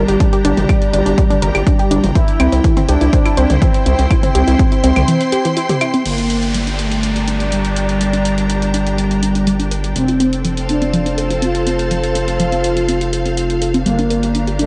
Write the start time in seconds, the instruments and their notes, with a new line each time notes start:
Already playing: analog polysynth G3, string section D4 G4 G5 A#5
0.08 analog synth bass G1, synth arpeggio sound G4, closed hi-hat
0.20 synth arpeggio sound D4, kick, closed hi-hat
0.33 synth arpeggio sound G4, closed hi-hat
0.45 analog synth bass G1, synth arpeggio sound D4, closed hi-hat
0.57 analog synth bass G1, closed hi-hat, mid tom
0.69 synth arpeggio sound G3, kick, closed hi-hat, claves
0.82 closed hi-hat
0.93 analog synth bass G1, synth arpeggio sound D4, closed hi-hat
1.06 analog synth bass G1, synth arpeggio sound D4, closed hi-hat
1.18 synth arpeggio sound G3, kick, closed hi-hat
1.30 synth arpeggio sound D4, closed hi-hat, mid tom
1.42 analog synth bass G1, synth arpeggio sound A#4, closed hi-hat
1.55 analog synth bass G1, synth arpeggio sound G4, closed hi-hat, claves
1.67 synth arpeggio sound D4, kick, closed hi-hat
1.79 synth arpeggio sound G4, closed hi-hat
1.91 analog synth bass G1, synth arpeggio sound D4, closed hi-hat
2.04 analog synth bass G1, closed hi-hat, mid tom
2.15 synth arpeggio sound E3, string section E4, analog polysynth E4, kick, closed hi-hat
2.28 closed hi-hat
2.40 analog synth bass C2, synth arpeggio sound C4, closed hi-hat, claves
2.52 analog synth bass C2, synth arpeggio sound C4, closed hi-hat
2.64 synth arpeggio sound E3, kick, closed hi-hat
2.77 synth arpeggio sound C4, closed hi-hat, mid tom
2.85 analog synth bass C2, analog polysynth D4, synth arpeggio sound G4, string section C5, closed hi-hat
3.01 analog synth bass C2, synth arpeggio sound E4, closed hi-hat
3.13 synth arpeggio sound C4, kick, closed hi-hat
3.26 synth arpeggio sound E4, closed hi-hat, claves
3.37 analog synth bass C2, synth arpeggio sound C4, closed hi-hat
3.50 analog synth bass C2, string section C6, closed hi-hat, mid tom
3.62 synth arpeggio sound E3, analog polysynth C4, kick, closed hi-hat
3.74 closed hi-hat
3.86 analog synth bass C2, synth arpeggio sound C4, closed hi-hat
3.99 analog synth bass C2, synth arpeggio sound C4, closed hi-hat
4.11 synth arpeggio sound E3, kick, closed hi-hat, claves
4.23 synth arpeggio sound C4, closed hi-hat, mid tom
4.35 analog synth bass C2, synth arpeggio sound G4, closed hi-hat
4.47 analog synth bass C2, synth arpeggio sound E4, closed hi-hat
4.59 synth arpeggio sound C4, kick, closed hi-hat
4.72 synth arpeggio sound E4, closed hi-hat
4.84 analog synth bass C2, synth arpeggio sound C4, closed hi-hat
4.96 analog synth bass C2, closed hi-hat, mid tom, claves
5.08 synth arpeggio sound E3, closed hi-hat
5.21 closed hi-hat
5.32 synth arpeggio sound G4, closed hi-hat
5.45 synth arpeggio sound E3, closed hi-hat
5.57 synth arpeggio sound E4, closed hi-hat
5.69 synth arpeggio sound G4, closed hi-hat, mid tom
5.81 synth arpeggio sound E4, closed hi-hat, claves
5.94 synth arpeggio sound C4, closed hi-hat
6.06 analog synth bass G1, analog synth pad G3 G4 D5 A#5, synth arpeggio sound G3, analog polysynth A#3, string section D4, closed hi-hat, crash, downlifter
6.18 closed hi-hat
6.30 synth arpeggio sound D4, closed hi-hat
6.43 synth arpeggio sound D4, closed hi-hat
6.48 string section G4
6.54 synth arpeggio sound G3, closed hi-hat
6.67 synth arpeggio sound D4, closed hi-hat
6.79 analog polysynth A3, synth arpeggio sound A#4, closed hi-hat
6.91 synth arpeggio sound G4, closed hi-hat
7.03 synth arpeggio sound D4, closed hi-hat
7.16 synth arpeggio sound G4, closed hi-hat
7.28 synth arpeggio sound D4, closed hi-hat
7.40 closed hi-hat
7.52 synth arpeggio sound G3, analog polysynth G3, closed hi-hat
7.65 closed hi-hat
7.76 synth arpeggio sound D4, closed hi-hat
7.81 string section A#5
7.89 synth arpeggio sound D4, closed hi-hat
8.01 synth arpeggio sound G3, closed hi-hat
8.13 synth arpeggio sound D4, closed hi-hat
8.25 synth arpeggio sound A#4, closed hi-hat
8.38 synth arpeggio sound G4, closed hi-hat
8.49 synth arpeggio sound D4, closed hi-hat
8.62 synth arpeggio sound G4, closed hi-hat
8.74 synth arpeggio sound D4, closed hi-hat
8.87 closed hi-hat
8.98 synth arpeggio sound G3, closed hi-hat
9.11 closed hi-hat
9.23 synth arpeggio sound D4, closed hi-hat
9.35 synth arpeggio sound D4, closed hi-hat
9.47 synth arpeggio sound G3, closed hi-hat
9.60 synth arpeggio sound D4, closed hi-hat
9.71 synth arpeggio sound A#4, closed hi-hat
9.84 synth arpeggio sound G4, closed hi-hat
9.96 analog synth bass F1, string section C4, synth arpeggio sound C4, analog polysynth C4, analog synth pad F4 A4 C5, closed hi-hat
10.08 synth arpeggio sound F4, closed hi-hat
10.20 synth arpeggio sound C4, closed hi-hat
10.33 closed hi-hat
10.39 string section A4
10.45 synth arpeggio sound F3, closed hi-hat
10.57 string section F5 A5, closed hi-hat
10.69 synth arpeggio sound C4, analog polysynth D4, closed hi-hat
10.82 synth arpeggio sound C4, closed hi-hat
10.93 synth arpeggio sound F3, closed hi-hat
11.06 synth arpeggio sound C4, closed hi-hat
11.18 synth arpeggio sound A4, closed hi-hat
11.30 synth arpeggio sound F4, closed hi-hat
11.42 synth arpeggio sound C4, analog polysynth F4, closed hi-hat
11.55 synth arpeggio sound F4, closed hi-hat
11.66 synth arpeggio sound C4, closed hi-hat
11.79 closed hi-hat
11.91 synth arpeggio sound F3, closed hi-hat
12.04 closed hi-hat
12.15 synth arpeggio sound C4, closed hi-hat
12.28 synth arpeggio sound C4, closed hi-hat
12.40 synth arpeggio sound F3, closed hi-hat
12.52 synth arpeggio sound C4, closed hi-hat
12.64 synth arpeggio sound A4, closed hi-hat
12.77 synth arpeggio sound F4, closed hi-hat
12.88 synth arpeggio sound C4, closed hi-hat
13.01 synth arpeggio sound F4, closed hi-hat
13.13 synth arpeggio sound A4, closed hi-hat
13.25 synth arpeggio sound C4, closed hi-hat
13.37 synth arpeggio sound F5, closed hi-hat
13.50 closed hi-hat
13.62 synth arpeggio sound A4, closed hi-hat
13.74 synth arpeggio sound C4, closed hi-hat
13.86 analog synth bass G1, synth arpeggio sound G3, analog synth pad G3 G4 D5 A#5, analog polysynth A#3, string section D4, closed hi-hat
13.99 synth arpeggio sound D4, closed hi-hat
14.10 synth arpeggio sound A#4, closed hi-hat
14.17 string section A#5
14.23 synth arpeggio sound G4, string section G4, closed hi-hat
14.35 synth arpeggio sound D4, closed hi-hat
14.47 synth arpeggio sound G4, closed hi-hat
14.59 analog polysynth A3, synth arpeggio sound D4, closed hi-hat